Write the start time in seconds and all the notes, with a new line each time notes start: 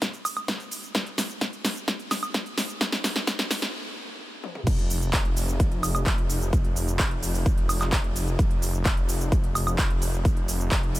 0.02 kick, snare, closed hi-hat, shaker
0.13 closed hi-hat, shaker
0.25 open hi-hat, high woodblock, shaker
0.37 closed hi-hat, high woodblock, shaker
0.48 kick, snare, closed hi-hat, shaker
0.60 closed hi-hat, shaker
0.71 open hi-hat, shaker
0.83 closed hi-hat, shaker
0.95 kick, snare, closed hi-hat, shaker
1.06 closed hi-hat, shaker
1.18 snare, open hi-hat, shaker
1.30 closed hi-hat, shaker
1.41 kick, snare, closed hi-hat, shaker
1.53 closed hi-hat, shaker
1.65 snare, open hi-hat, shaker
1.76 closed hi-hat, shaker
1.88 kick, snare, closed hi-hat, shaker
1.99 closed hi-hat, shaker
2.11 snare, open hi-hat, high woodblock, shaker
2.23 closed hi-hat, high woodblock, shaker
2.34 kick, snare, closed hi-hat, shaker
2.46 closed hi-hat, shaker
2.58 snare, open hi-hat, shaker
2.69 closed hi-hat, shaker
2.81 kick, snare, closed hi-hat, shaker
2.92 snare, closed hi-hat, shaker
3.04 snare, open hi-hat, shaker
3.16 snare, shaker
3.27 kick, snare, closed hi-hat, shaker
3.39 snare, closed hi-hat, shaker
3.51 snare, open hi-hat, shaker
3.62 snare, closed hi-hat, shaker
4.44 high tom
4.55 mid tom
4.67 F1, kick, closed hi-hat, crash, shaker
4.79 closed hi-hat
4.90 open hi-hat, shaker
5.02 closed hi-hat, shaker
5.13 kick, clap, closed hi-hat, shaker
5.25 closed hi-hat
5.37 open hi-hat, shaker
5.48 closed hi-hat, shaker
5.60 kick, closed hi-hat, shaker
5.71 closed hi-hat
5.83 open hi-hat, high woodblock, shaker
5.95 closed hi-hat, high woodblock, shaker
6.06 kick, clap, closed hi-hat, shaker
6.18 closed hi-hat
6.30 open hi-hat, shaker
6.41 closed hi-hat, shaker
6.53 kick, closed hi-hat, shaker
6.64 closed hi-hat
6.76 open hi-hat, shaker
6.88 closed hi-hat, shaker
6.99 kick, clap, closed hi-hat, shaker
7.11 closed hi-hat
7.23 open hi-hat, shaker
7.34 open hi-hat, shaker
7.46 kick, closed hi-hat, shaker
7.58 closed hi-hat
7.69 open hi-hat, high woodblock, shaker
7.81 clap, closed hi-hat, high woodblock, shaker
7.92 kick, clap, closed hi-hat, shaker
8.04 closed hi-hat
8.16 open hi-hat, shaker
8.27 closed hi-hat, shaker
8.39 F1, kick, closed hi-hat, shaker
8.51 closed hi-hat
8.62 open hi-hat, shaker
8.74 closed hi-hat, shaker
8.85 kick, clap, closed hi-hat, shaker
8.97 closed hi-hat
9.09 open hi-hat, shaker
9.20 closed hi-hat, shaker
9.32 kick, closed hi-hat, shaker
9.44 closed hi-hat
9.55 open hi-hat, high woodblock, shaker
9.67 closed hi-hat, high woodblock, shaker
9.79 kick, clap, closed hi-hat, shaker
9.90 closed hi-hat
10.02 open hi-hat, shaker
10.13 closed hi-hat, shaker
10.25 kick, closed hi-hat, shaker
10.37 closed hi-hat
10.48 open hi-hat, shaker
10.60 closed hi-hat, shaker
10.71 kick, clap, closed hi-hat, shaker
10.83 closed hi-hat
10.95 open hi-hat, shaker